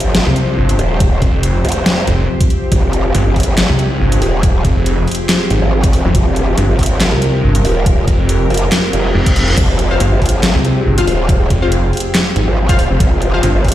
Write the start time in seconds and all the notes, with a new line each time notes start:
Already playing: G1 F3 C4 G4 C5
0.00 closed hi-hat
0.15 snare, closed hi-hat
0.26 C2
0.36 closed hi-hat
0.58 G1
0.69 closed hi-hat
0.79 D#1, closed hi-hat
1.00 kick, closed hi-hat
1.22 F1, kick, closed hi-hat
1.43 closed hi-hat
1.65 C2, closed hi-hat
1.69 closed hi-hat
1.72 closed hi-hat
1.86 snare, closed hi-hat
2.07 F1, closed hi-hat
2.41 kick, closed hi-hat
2.50 closed hi-hat
2.72 F1 G#4, kick, closed hi-hat
2.93 closed hi-hat
3.15 G1, closed hi-hat
3.26 G1
3.36 kick, closed hi-hat, open hi-hat
3.43 closed hi-hat
3.58 snare, clap, closed hi-hat
3.69 C2
3.79 closed hi-hat
4.00 G1
4.12 closed hi-hat
4.22 D#1, open hi-hat
4.43 kick, closed hi-hat
4.65 F1, kick, closed hi-hat
4.86 closed hi-hat
5.08 closed hi-hat, open hi-hat
5.15 closed hi-hat
5.29 snare, clap, closed hi-hat
5.50 G#1, closed hi-hat
5.62 G#1
5.84 kick, closed hi-hat
5.93 open hi-hat
6.05 F1, zap
6.15 F1 A#4, kick, closed hi-hat
6.36 closed hi-hat
6.58 G1, closed hi-hat
6.69 G1
6.79 kick, closed hi-hat, open hi-hat
6.86 closed hi-hat
7.00 snare, clap, closed hi-hat
7.12 C2
7.22 closed hi-hat
7.43 G1
7.55 closed hi-hat
7.65 D#1, open hi-hat
7.86 kick, closed hi-hat
8.08 F1, kick, closed hi-hat
8.29 closed hi-hat
8.50 F1, closed hi-hat, open hi-hat
8.57 closed hi-hat
8.72 snare, clap, closed hi-hat, reverse cymbal
8.93 F1, closed hi-hat
9.15 F1
9.26 kick, closed hi-hat
9.36 open hi-hat
9.48 closed hi-hat
9.57 F1 G#4, kick, closed hi-hat, crash
9.79 closed hi-hat
9.91 F4 C5 F5
10.00 G1, closed hi-hat
10.12 G1
10.22 kick, closed hi-hat, open hi-hat
10.29 closed hi-hat
10.43 snare, clap, closed hi-hat
10.55 C2
10.65 closed hi-hat
10.86 G1
10.98 F4 C5 F5, closed hi-hat
11.07 D#1, open hi-hat
11.29 kick, closed hi-hat
11.50 F1, kick, closed hi-hat
11.62 F4 C5 F5
11.72 closed hi-hat
11.93 closed hi-hat, open hi-hat
12.00 closed hi-hat
12.15 snare, clap, closed hi-hat
12.36 G#1, closed hi-hat
12.48 G#1
12.69 F4 C5 F5, kick, closed hi-hat
12.79 open hi-hat
12.91 F1
13.00 F1 C5, kick, closed hi-hat
13.22 closed hi-hat
13.34 F4 C5 F5
13.43 G1, closed hi-hat
13.55 G1
13.65 kick, closed hi-hat, open hi-hat